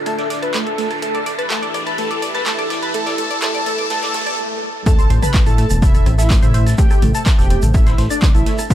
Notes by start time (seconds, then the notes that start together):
Already playing: A2 D3 A3 D4 F4 A4 E5, riser
0.06 A3 A4 A5, cross-stick, closed hi-hat
0.19 D5, snare, closed hi-hat
0.30 D5, snare, closed hi-hat, open hi-hat
0.42 B4 A5 B5, closed hi-hat
0.54 A3, snare, clap, closed hi-hat, mid tom
0.66 A4 A5, closed hi-hat
0.78 A3, snare, open hi-hat
0.91 A5, cross-stick, closed hi-hat
1.02 E3 A3 E4 G4 A4 B4 A5, closed hi-hat
1.15 D5, closed hi-hat, mid tom
1.26 D5, closed hi-hat, open hi-hat
1.38 B4 A5 B5, closed hi-hat
1.50 A3 A4 A5, snare, clap, closed hi-hat
1.62 D5, closed hi-hat
1.73 B4 D5, cross-stick, closed hi-hat, open hi-hat, mid tom
1.86 B4 A5 B5, closed hi-hat
1.98 A3 A4 A5, closed hi-hat
2.11 D5, closed hi-hat
2.22 D5, closed hi-hat, open hi-hat
2.34 B4 A5 B5, snare, closed hi-hat, mid tom
2.46 A3 A4 A5, snare, clap, closed hi-hat
2.59 D5, cross-stick, closed hi-hat
2.70 D5, snare, closed hi-hat, open hi-hat
2.82 B4 A5 B5, closed hi-hat
2.94 A3 A4 A5, closed hi-hat, mid tom
3.06 D5, snare, closed hi-hat
3.18 A3 A4 A5, open hi-hat
3.30 D5, closed hi-hat
3.42 A3 A4 A5, cross-stick, snare, clap, closed hi-hat
3.54 D5, snare, closed hi-hat, mid tom
3.66 A3 A4 A5, closed hi-hat, open hi-hat
3.78 D5, closed hi-hat
3.90 A3 A4 A5, snare, closed hi-hat, swell
4.02 D5, snare, closed hi-hat
4.14 A3 A4 A5, snare, closed hi-hat, open hi-hat, mid tom
4.26 D5, cross-stick, closed hi-hat
4.86 A3 A4 C5 E5 A5, kick, closed hi-hat, impact, shaker
4.98 C5, closed hi-hat, shaker
5.10 A1 C5, closed hi-hat, open hi-hat
5.22 B4 A5 B5, cross-stick, closed hi-hat, mid tom, shaker
5.34 A3, kick, snare, clap, closed hi-hat, shaker
5.46 A2 A4 A5, closed hi-hat, shaker
5.58 A3, closed hi-hat, open hi-hat
5.70 E1 A5, closed hi-hat, shaker
5.82 E4 A4 E5, kick, closed hi-hat, mid tom, shaker
5.94 A4, closed hi-hat, shaker
6.06 A1 C4, cross-stick, closed hi-hat, open hi-hat
6.18 E4 A4 E5, snare, closed hi-hat, shaker
6.30 A3, kick, snare, clap, closed hi-hat, shaker
6.42 A1 E4 C5 E5, closed hi-hat, mid tom, shaker
6.54 C5, closed hi-hat, open hi-hat
6.66 A5, snare, closed hi-hat, shaker
6.78 A3 G4 G5, kick, closed hi-hat, shaker
6.91 A4, cross-stick, closed hi-hat, shaker
7.02 A1 A3, closed hi-hat, open hi-hat, mid tom
7.15 A4 A5, closed hi-hat, shaker
7.26 A4, kick, snare, clap, closed hi-hat, shaker
7.38 E1 G4 A4 G5, snare, closed hi-hat, shaker
7.50 C4, closed hi-hat, open hi-hat
7.62 A1 A4, closed hi-hat, mid tom, shaker
7.74 A3 E4 E5, kick, cross-stick, closed hi-hat, shaker
7.86 C5, snare, closed hi-hat, shaker
7.98 A1 C5, snare, closed hi-hat, open hi-hat
8.10 D4 D5 A5, closed hi-hat, shaker
8.22 A3, kick, snare, clap, closed hi-hat, mid tom, shaker
8.35 A1 E4 A4 E5, closed hi-hat, shaker
8.46 A3, snare, open hi-hat
8.59 A5, cross-stick, closed hi-hat, shaker
8.70 B3 F4 B4 D5 F5, kick, closed hi-hat, shaker